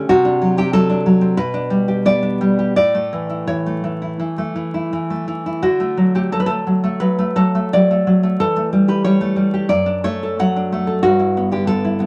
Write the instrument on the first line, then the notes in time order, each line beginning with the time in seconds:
nylon-string guitar
0.09 C3 F#4
0.25 D4
0.42 F#3
0.57 C4 G4
0.73 F#3 A4
0.89 D4
1.06 F#3
1.21 C4
1.37 B2 B4
1.54 D4
1.70 G3
1.88 G4
2.05 B3 D5
2.23 D4
2.41 G3
2.59 G4
2.76 A2 D5
2.94 A3
3.13 E3
3.29 E4
3.47 E3 C#5
3.66 A3
3.84 E3
4.02 E4
4.20 E3
4.38 A3
4.56 E3
4.74 E4
4.93 E3
5.10 A3
5.28 E3
5.46 E4
5.62 D3 F#4
5.80 A3
5.97 F#3
6.15 A3 G4
6.32 F#3 A4
6.40 B4
6.46 A3 A4
6.67 F#3
6.84 A3
7.00 F#3 B4
7.19 A3
7.36 F#3 A4
7.55 A3
7.73 F#3 D5
7.91 A3
8.07 F#3
8.23 A3
8.40 E3 A4
8.56 A3
8.73 G3
8.88 G4 B4
9.05 G3 C#5
9.21 A3
9.36 G3
9.54 G4
9.69 F#2 D5
9.86 D4
10.04 A3 C#5
10.23 A4
10.39 F#3 F#5
10.56 D4
10.72 A3
10.87 A4
11.03 G2 F#4
11.19 E4
11.37 B3
11.51 D3 G4
11.67 B3 A4
11.85 E4
12.00 B3